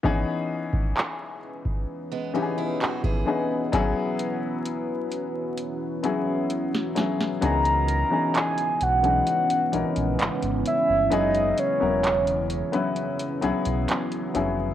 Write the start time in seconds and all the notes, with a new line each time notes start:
0.03 E3 B3 C#4 D#4 G#4 B4, kick
0.73 kick
0.97 clap
1.65 kick
1.88 F#4
2.11 G#3 B3
2.34 E3 B3 C#4 D#4 G4
2.42 G#4
2.58 C#4 E4
2.81 D#4 F#4, clap
3.04 E4 G#4, kick
3.26 E3 B3 C#4 D#4 G#4
3.72 E3 F#3 B3 C#4 E4 G#4 B4, kick, closed hi-hat
4.19 closed hi-hat
4.65 closed hi-hat
5.11 closed hi-hat
5.58 C#5, closed hi-hat
6.03 F#3 B3 C#4 E4 G#4, closed hi-hat
6.50 closed hi-hat
6.74 snare
6.95 F#3 B3 C#4 E4 G#4, snare, closed hi-hat
7.21 snare
7.41 C#2 C#3 E3 G#3 B3 C#4 D#4 G#4 A#5, closed hi-hat
7.65 closed hi-hat
7.88 closed hi-hat
8.10 E3 B3 C#4 D#4 G#4
8.35 G#5, clap, closed hi-hat
8.58 closed hi-hat
8.81 B1 F#5, closed hi-hat
9.03 E3 B3 C#4 D#4 G#4, closed hi-hat
9.27 closed hi-hat
9.50 closed hi-hat
9.72 A#1 E3 B3 C#4 D#4 A#4, closed hi-hat
9.96 A#1, closed hi-hat
10.19 G#1, clap, closed hi-hat
10.42 G#1, closed hi-hat
10.66 E5, closed hi-hat
10.89 G1
11.10 F#1 F#3 B3 C#4 E4 G#4 D#5, closed hi-hat
11.35 closed hi-hat
11.58 C#5, closed hi-hat
11.80 E1 F#3 B3 C#4 E4 A#4
12.04 clap, closed hi-hat
12.27 closed hi-hat
12.50 closed hi-hat
12.72 F#3 B3 C#4 E4 B4, closed hi-hat
12.96 F#4, closed hi-hat
13.19 closed hi-hat
13.41 B1 F#3 B3 C#4 E4 G#4, closed hi-hat
13.65 B1, closed hi-hat
13.88 clap, closed hi-hat
14.12 closed hi-hat
14.34 F1 F#3 B3 C#4 E4 G#4, closed hi-hat